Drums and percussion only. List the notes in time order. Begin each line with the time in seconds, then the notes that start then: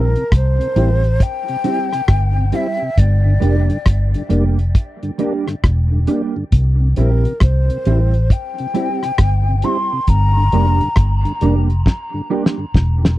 0.16 closed hi-hat
0.32 kick, cross-stick, closed hi-hat
0.61 closed hi-hat
0.76 closed hi-hat
1.04 closed hi-hat
1.20 kick, closed hi-hat
1.48 closed hi-hat
1.64 closed hi-hat
1.93 cross-stick, closed hi-hat
2.08 kick, cross-stick, closed hi-hat
2.52 closed hi-hat
2.98 kick, closed hi-hat
3.42 closed hi-hat
3.70 closed hi-hat
3.86 kick, cross-stick, closed hi-hat
4.14 closed hi-hat
4.30 closed hi-hat
4.59 closed hi-hat
4.75 kick, closed hi-hat
5.03 closed hi-hat
5.19 closed hi-hat
5.48 cross-stick, closed hi-hat
5.64 kick, cross-stick, closed hi-hat
6.07 closed hi-hat
6.52 kick, closed hi-hat
6.96 closed hi-hat
7.25 closed hi-hat
7.40 kick, cross-stick, closed hi-hat
7.70 closed hi-hat
7.85 closed hi-hat
8.14 closed hi-hat
8.30 kick, closed hi-hat
8.58 closed hi-hat
8.75 closed hi-hat
9.03 cross-stick, closed hi-hat
9.18 kick, cross-stick, closed hi-hat
9.62 closed hi-hat
10.07 kick, closed hi-hat
10.52 closed hi-hat
10.81 closed hi-hat
10.96 kick, cross-stick, closed hi-hat
11.25 closed hi-hat
11.41 closed hi-hat
11.70 closed hi-hat
11.86 kick, snare
12.46 snare
12.74 kick, snare
13.05 snare